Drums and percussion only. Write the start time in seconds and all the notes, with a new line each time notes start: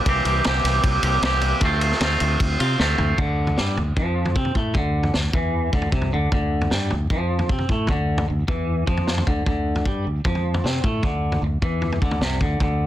0.06 kick, ride
0.25 ride
0.44 snare, ride
0.65 snare, ride
0.84 kick, ride
1.03 ride
1.23 snare, ride
1.41 ride
1.61 kick, ride
1.81 ride
1.92 snare
2.01 snare, ride
2.20 ride
2.40 kick, ride
2.60 ride
2.79 snare
2.98 floor tom
3.18 kick, floor tom
3.47 floor tom
3.57 snare
3.77 floor tom
3.97 kick
4.25 floor tom
4.36 kick
4.45 floor tom
4.55 kick
4.74 kick, floor tom
5.03 floor tom
5.14 snare
5.33 kick, floor tom
5.73 kick
5.82 floor tom
5.92 kick
6.01 floor tom
6.32 kick, floor tom
6.61 floor tom
6.71 snare
6.90 floor tom
7.10 kick
7.39 floor tom
7.49 kick
7.58 floor tom
7.69 kick
7.87 kick, floor tom
8.18 floor tom, mid tom
8.48 kick, floor tom
8.87 kick
8.97 floor tom
9.07 snare
9.18 floor tom, mid tom
9.27 kick
9.46 kick, floor tom
9.75 floor tom
9.85 kick
10.25 kick, floor tom
10.35 floor tom
10.54 floor tom, mid tom
10.65 snare
10.83 kick, floor tom
11.03 kick, floor tom
11.32 floor tom
11.62 kick
11.82 floor tom
11.92 floor tom
12.02 kick
12.11 floor tom, mid tom
12.21 snare
12.40 kick, floor tom
12.60 kick, floor tom